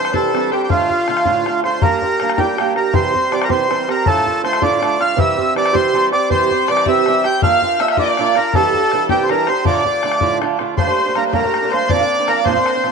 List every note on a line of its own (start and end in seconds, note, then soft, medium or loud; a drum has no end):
0.00 0.12 E3 medium
0.00 0.12 G3 medium
0.00 0.11 C4 medium
0.00 0.10 D4 medium
0.00 0.15 C5 medium
0.00 0.16 C5 loud
0.05 bodhran medium
0.12 0.34 C3 medium
0.12 0.32 E3 medium
0.12 0.33 G3 medium
0.12 0.34 C4 medium
0.12 0.33 D4 medium
0.12 0.52 A4 medium
0.12 0.50 A4 medium
0.12 bodhran medium
0.33 0.52 E3 medium
0.33 0.52 G3 medium
0.33 0.51 C4 medium
0.33 0.49 D4 medium
0.33 bodhran medium
0.50 0.70 G3 soft
0.50 0.70 C4 medium
0.50 0.69 D4 medium
0.50 0.70 G4 medium
0.50 0.62 G4 medium
0.50 bodhran soft
0.63 0.70 G4 medium
0.69 0.90 D2 medium
0.69 0.90 A2 medium
0.69 0.91 D3 medium
0.69 0.90 A3 medium
0.69 0.89 D4 medium
0.69 1.60 F4 medium
0.69 0.88 F4 medium
0.69 bodhran medium
0.89 1.07 D3 soft
0.89 1.08 A3 soft
0.89 1.08 D4 soft
0.89 1.08 F4 soft
0.89 bodhran soft
1.08 1.25 D3 medium
1.08 1.25 A3 medium
1.08 1.25 D4 medium
1.08 1.25 F4 medium
1.08 bodhran medium
1.17 bodhran medium
1.25 1.47 D2 medium
1.25 1.47 A2 medium
1.25 1.44 D3 medium
1.25 1.46 A3 medium
1.25 1.46 D4 medium
1.25 1.46 F4 medium
1.25 bodhran medium
1.46 1.64 D3 medium
1.46 1.65 A3 medium
1.46 1.64 D4 medium
1.46 1.63 F4 medium
1.46 bodhran medium
1.64 1.81 D3 soft
1.64 1.82 A3 soft
1.64 1.82 D4 medium
1.64 1.82 F4 medium
1.64 1.83 C5 medium
1.64 bodhran soft
1.82 2.02 G3 medium
1.82 2.03 A#3 medium
1.82 2.02 D4 medium
1.82 2.00 G4 medium
1.82 2.40 A#4 medium
1.82 bodhran loud
2.02 2.21 A#3 soft
2.02 2.21 D4 soft
2.02 2.20 G4 soft
2.02 bodhran soft
2.20 2.38 G3 medium
2.20 2.39 A#3 medium
2.20 2.38 D4 medium
2.20 2.38 G4 medium
2.20 bodhran medium
2.30 bodhran medium
2.38 2.57 G3 medium
2.38 2.58 A#3 medium
2.38 2.59 D4 medium
2.38 2.73 G4 medium
2.38 2.59 G4 medium
2.38 bodhran loud
2.58 2.76 G3 medium
2.58 2.76 A#3 medium
2.58 2.75 D4 medium
2.58 2.74 G4 medium
2.58 bodhran medium
2.75 2.94 A#3 soft
2.75 2.93 D4 soft
2.75 2.93 G4 medium
2.75 2.95 A#4 medium
2.75 bodhran medium
2.93 3.14 C3 medium
2.93 3.14 E3 medium
2.93 3.15 G3 medium
2.93 3.14 C4 medium
2.93 3.13 G4 medium
2.93 3.34 C5 loud
2.93 bodhran medium
3.14 3.31 G3 soft
3.14 3.32 C4 soft
3.14 3.32 G4 medium
3.14 bodhran soft
3.31 3.49 E3 medium
3.31 3.49 G3 medium
3.31 3.49 C4 medium
3.31 3.48 G4 medium
3.31 3.44 D5 loud
3.31 bodhran medium
3.42 3.50 A#4 medium
3.42 bodhran medium
3.49 3.71 C3 medium
3.49 3.68 E3 medium
3.49 3.68 G3 medium
3.49 3.69 C4 medium
3.49 3.70 G4 medium
3.49 3.89 C5 medium
3.49 bodhran medium
3.69 3.87 E3 medium
3.69 3.88 G3 medium
3.69 3.88 C4 medium
3.69 3.86 G4 medium
3.69 bodhran medium
3.87 4.06 G3 soft
3.87 4.06 C4 medium
3.87 4.06 G4 medium
3.87 4.07 A#4 medium
3.87 bodhran medium
4.05 4.26 D2 medium
4.05 4.26 A2 medium
4.05 4.26 D3 medium
4.05 4.26 A3 medium
4.05 4.26 D4 loud
4.05 4.25 F4 medium
4.05 4.42 A4 loud
4.05 bodhran medium
4.26 4.42 D3 soft
4.26 4.42 A3 soft
4.26 4.44 D4 medium
4.26 4.44 F4 medium
4.26 bodhran soft
4.43 4.61 D3 medium
4.43 4.61 A3 medium
4.43 4.61 D4 medium
4.43 4.60 F4 medium
4.43 4.63 C5 loud
4.43 bodhran medium
4.53 bodhran medium
4.62 4.83 D2 medium
4.62 4.83 A2 medium
4.62 4.80 D3 medium
4.62 4.81 A3 medium
4.62 4.82 D4 medium
4.62 4.82 F4 medium
4.62 5.01 D5 medium
4.62 bodhran medium
4.82 5.00 D3 medium
4.82 5.00 A3 medium
4.82 5.00 D4 medium
4.82 4.98 F4 medium
4.82 bodhran medium
5.00 5.16 D3 soft
5.00 5.16 A3 soft
5.00 5.17 D4 soft
5.00 5.18 F4 medium
5.00 5.19 F5 loud
5.00 bodhran soft
5.16 5.37 C3 medium
5.16 5.37 E3 medium
5.16 5.38 G3 medium
5.16 5.37 C4 medium
5.16 5.36 G4 medium
5.16 5.54 E5 medium
5.16 bodhran medium
5.37 5.55 G3 soft
5.37 5.55 C4 medium
5.37 5.56 G4 soft
5.37 bodhran soft
5.55 5.73 E3 medium
5.55 5.73 G3 medium
5.55 5.72 C4 medium
5.55 5.72 G4 medium
5.55 5.75 D5 loud
5.55 bodhran medium
5.66 bodhran medium
5.73 5.94 C3 medium
5.73 5.92 E3 medium
5.73 5.93 G3 medium
5.73 5.94 C4 medium
5.73 5.94 G4 medium
5.73 6.09 C5 loud
5.73 bodhran medium
5.93 6.11 E3 medium
5.93 6.12 G3 medium
5.93 6.12 C4 medium
5.93 6.10 G4 medium
5.93 bodhran soft
6.12 6.30 G3 soft
6.12 6.30 C4 soft
6.12 6.30 G4 medium
6.12 6.29 D5 loud
6.12 bodhran soft
6.29 6.50 C3 medium
6.29 6.50 E3 medium
6.29 6.51 G3 medium
6.29 6.51 C4 medium
6.29 6.51 G4 medium
6.29 6.69 C5 medium
6.29 6.69 C5 loud
6.29 bodhran medium
6.51 6.68 G3 soft
6.51 6.69 C4 soft
6.51 6.69 G4 medium
6.51 bodhran soft
6.68 6.86 E3 medium
6.68 6.86 G3 medium
6.68 6.86 C4 medium
6.68 6.86 G4 medium
6.68 6.88 D5 medium
6.68 6.87 D5 loud
6.68 bodhran medium
6.77 bodhran medium
6.86 7.07 C3 medium
6.86 7.06 E3 medium
6.86 7.07 G3 medium
6.86 7.07 C4 medium
6.86 7.07 G4 medium
6.86 7.24 E5 medium
6.86 7.26 E5 medium
6.86 bodhran medium
7.06 7.24 E3 medium
7.06 7.25 G3 medium
7.06 7.25 C4 medium
7.06 7.24 G4 medium
7.06 bodhran medium
7.24 7.43 G3 soft
7.24 7.43 C4 soft
7.24 7.42 G4 soft
7.24 7.35 G5 medium
7.24 7.41 G5 loud
7.24 bodhran medium
7.35 7.43 G5 medium
7.41 7.62 A#3 medium
7.41 7.63 D4 medium
7.41 7.62 F4 medium
7.41 7.61 A#4 medium
7.41 7.80 F5 loud
7.41 7.82 F5 loud
7.41 bodhran medium
7.62 7.79 D4 soft
7.62 7.80 F4 soft
7.62 7.80 A#4 medium
7.62 bodhran soft
7.79 7.97 A#3 medium
7.79 7.97 D4 medium
7.79 7.96 F4 medium
7.79 7.96 A#4 medium
7.79 7.96 E5 medium
7.79 7.89 E5 loud
7.79 bodhran medium
7.88 7.97 E5 medium
7.88 bodhran medium
7.97 8.17 A#3 medium
7.97 8.18 D4 medium
7.97 8.18 F4 medium
7.97 8.18 A#4 medium
7.97 8.49 D5 medium
7.97 8.38 D5 medium
7.97 bodhran medium
8.17 8.36 A#3 medium
8.17 8.36 D4 medium
8.17 8.36 F4 medium
8.17 8.35 A#4 medium
8.17 bodhran medium
8.35 8.54 D4 soft
8.35 8.54 F4 soft
8.35 8.54 A#4 medium
8.35 bodhran medium
8.54 8.74 C3 medium
8.54 8.74 E3 medium
8.54 8.75 G3 medium
8.54 8.75 D4 medium
8.54 8.74 G4 loud
8.54 9.11 A4 medium
8.54 9.06 A4 loud
8.54 bodhran medium
8.74 8.92 G3 soft
8.74 8.93 D4 soft
8.74 8.92 G4 medium
8.74 bodhran soft
8.92 9.10 E3 medium
8.92 9.09 G3 medium
8.92 9.09 D4 medium
8.92 9.09 G4 medium
8.92 bodhran medium
9.09 9.31 C3 medium
9.09 9.28 E3 medium
9.09 9.30 G3 medium
9.09 9.30 D4 medium
9.09 9.31 G4 medium
9.09 9.30 G4 medium
9.09 9.26 G4 loud
9.09 bodhran medium
9.24 9.29 C5 medium
9.29 9.48 E3 medium
9.29 9.48 G3 medium
9.29 9.48 D4 medium
9.29 9.47 G4 medium
9.29 9.48 A#4 medium
9.29 9.49 A#4 medium
9.29 bodhran medium
9.47 9.65 G3 soft
9.47 9.64 D4 medium
9.47 9.66 G4 medium
9.47 9.65 C5 medium
9.47 9.65 C5 loud
9.47 bodhran medium
9.64 9.85 D2 medium
9.64 9.85 A2 medium
9.64 9.86 D3 medium
9.64 9.85 A3 medium
9.64 9.85 D4 medium
9.64 9.84 F4 medium
9.64 10.38 D5 medium
9.64 10.38 D5 loud
9.64 bodhran medium
9.85 10.02 D3 soft
9.85 10.03 A3 soft
9.85 10.04 D4 soft
9.85 10.03 F4 soft
9.85 bodhran soft
10.03 10.21 D3 medium
10.03 10.21 A3 medium
10.03 10.20 D4 medium
10.03 10.21 F4 medium
10.03 bodhran medium
10.12 bodhran medium
10.21 10.43 D2 medium
10.21 10.43 A2 medium
10.21 10.40 D3 medium
10.21 10.40 A3 medium
10.21 10.42 D4 medium
10.21 10.42 F4 medium
10.21 bodhran medium
10.41 10.59 D3 medium
10.41 10.60 A3 medium
10.41 10.59 D4 medium
10.41 10.58 F4 medium
10.41 bodhran medium
10.59 10.76 D3 soft
10.59 10.77 A3 medium
10.59 10.77 D4 medium
10.59 10.77 F4 medium
10.59 bodhran medium
10.77 10.88 G2 medium
10.77 10.87 D3 medium
10.77 10.88 G3 medium
10.77 10.86 A3 medium
10.77 10.87 A#3 medium
10.77 10.86 D4 medium
10.77 11.17 C5 loud
10.77 11.17 C5 medium
10.77 bodhran medium
10.87 11.07 G3 medium
10.87 11.06 A3 medium
10.87 11.06 A#3 medium
10.87 11.04 D4 medium
10.87 bodhran soft
11.06 11.14 G3 soft
11.06 11.15 A3 medium
11.06 11.14 A#3 soft
11.06 11.15 D4 medium
11.15 11.31 G3 medium
11.15 11.32 A3 medium
11.15 11.32 A#3 medium
11.15 11.33 D4 medium
11.15 11.26 A#4 medium
11.15 11.24 A#4 medium
11.15 bodhran medium
11.27 11.34 C5 medium
11.32 11.43 G2 medium
11.32 11.43 D3 medium
11.32 11.43 G3 medium
11.32 11.43 A3 medium
11.32 11.44 A#3 medium
11.32 11.42 D4 medium
11.32 11.71 A#4 medium
11.32 11.73 A#4 medium
11.32 bodhran medium
11.43 11.63 G3 soft
11.43 11.62 A3 soft
11.43 11.62 A#3 soft
11.43 11.61 D4 medium
11.43 bodhran soft
11.54 bodhran medium
11.62 11.70 G3 soft
11.62 11.72 A3 medium
11.62 11.71 A#3 soft
11.62 11.72 D4 medium
11.70 11.89 G3 medium
11.70 11.90 A3 medium
11.70 11.89 A#3 medium
11.70 11.90 D4 medium
11.70 11.89 C5 medium
11.70 11.91 C5 medium
11.70 bodhran soft
11.88 12.00 A#2 medium
11.88 12.00 F3 medium
11.88 12.00 A#3 medium
11.88 12.00 C4 medium
11.88 11.98 D4 medium
11.88 12.46 D5 medium
11.88 12.29 D5 loud
11.88 bodhran medium
12.00 12.20 A#3 soft
12.00 12.18 C4 medium
12.00 12.18 D4 medium
12.00 bodhran soft
12.19 12.27 A#3 soft
12.19 12.28 C4 soft
12.19 12.28 D4 medium
12.28 12.45 F3 medium
12.28 12.45 A#3 medium
12.28 12.46 C4 medium
12.28 12.46 D4 medium
12.28 12.40 A#4 loud
12.28 bodhran medium
12.39 12.46 D5 medium
12.44 12.56 A#2 medium
12.44 12.56 F3 medium
12.44 12.56 A#3 medium
12.44 12.56 C4 medium
12.44 12.54 D4 medium
12.44 12.92 C5 medium
12.44 bodhran medium
12.55 12.76 A#3 soft
12.55 12.75 C4 soft
12.55 12.74 D4 medium
12.55 bodhran soft
12.66 bodhran medium
12.75 12.83 A#3 soft
12.75 12.84 C4 soft
12.75 12.84 D4 soft
12.84 12.92 F3 medium
12.84 12.92 A#3 medium
12.84 12.92 C4 medium
12.84 12.92 D4 medium
12.84 bodhran soft